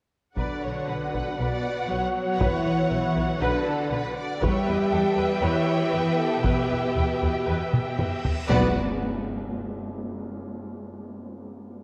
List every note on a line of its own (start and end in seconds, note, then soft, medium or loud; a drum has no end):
0.37 0.45 B1 soft
0.37 1.35 D3 soft
0.37 4.38 B3 medium
0.37 1.35 D4 medium
0.37 4.38 F#4 medium
0.37 0.61 B4 soft
0.37 4.38 B4 soft
0.37 0.61 D5 soft
0.37 4.38 F#5 soft
0.37 4.38 F#5 medium
0.37 taiko medium
0.61 0.71 B1 soft
0.61 0.70 B4 soft
0.61 0.87 C#5 soft
0.87 0.96 B1 soft
0.87 1.11 B4 soft
0.87 0.96 B4 soft
1.12 1.21 B1 soft
1.12 1.38 B4 soft
1.12 1.22 B4 soft
1.12 taiko soft
1.38 1.47 B1 medium
1.38 1.89 B2 medium
1.38 1.90 B3 medium
1.38 1.63 B4 soft
1.38 1.88 D5 medium
1.88 1.98 B1 soft
1.88 2.40 F#3 medium
1.88 2.39 F#4 medium
1.88 1.98 B4 soft
1.88 3.41 C#5 medium
2.39 2.48 B1 medium
2.39 3.41 E3 medium
2.39 3.41 E4 medium
2.39 2.64 B4 medium
2.39 taiko medium
2.65 2.73 B1 soft
2.65 2.74 B4 soft
2.90 2.99 B1 medium
2.90 2.98 B4 soft
3.16 3.24 B1 medium
3.16 3.24 B4 soft
3.40 3.49 B1 medium
3.40 4.17 D3 medium
3.40 4.15 D4 medium
3.40 3.66 B4 medium
3.40 3.64 B4 medium
3.66 3.91 A4 medium
3.90 4.00 B1 medium
3.90 4.16 B4 medium
3.90 3.99 B4 soft
4.16 4.41 D5 medium
4.41 4.49 E2 medium
4.41 5.39 G3 medium
4.41 8.46 B3 medium
4.41 5.38 G4 loud
4.41 8.50 G4 medium
4.41 4.65 B4 medium
4.41 8.46 B4 medium
4.41 4.67 C#5 medium
4.41 8.26 E5 medium
4.41 8.50 E5 medium
4.41 8.26 G5 medium
4.41 taiko medium
4.66 4.75 E2 soft
4.66 4.74 B4 soft
4.66 4.92 B4 medium
4.91 5.00 E2 soft
4.91 5.17 A4 medium
4.91 5.00 B4 soft
5.16 5.25 E2 medium
5.16 5.24 B4 medium
5.16 5.42 B4 medium
5.41 5.50 E2 medium
5.41 6.44 E3 medium
5.41 6.45 E4 medium
5.41 5.66 B4 medium
5.41 5.93 C#5 medium
5.92 6.01 E2 soft
5.92 6.18 B4 medium
5.92 6.01 B4 soft
6.17 6.44 A4 medium
6.43 6.53 E2 medium
6.43 7.95 B2 medium
6.43 7.97 B3 medium
6.43 8.21 G4 medium
6.43 6.68 B4 medium
6.43 taiko medium
6.43 reverse cymbal soft
6.70 6.78 E2 soft
6.70 6.78 B4 soft
6.96 7.04 E2 soft
6.96 7.04 B4 soft
6.96 taiko low medium
7.21 7.29 E2 soft
7.21 7.30 B4 soft
7.21 taiko low soft
7.47 7.55 E2 medium
7.47 7.71 B4 medium
7.73 taiko mid medium
7.98 8.06 E2 soft
7.98 8.06 B4 soft
7.98 taiko low-mid medium
8.25 taiko low medium
8.49 8.79 B1 medium
8.49 8.79 B3 medium
8.49 8.73 B3 loud
8.49 8.79 F#4 medium
8.49 8.78 B4 medium
8.49 8.79 B4 medium
8.49 8.78 D5 medium
8.49 8.80 D5 medium
8.49 8.78 F#5 medium
8.49 taiko low medium
8.49 tam-tam medium
8.49 impact medium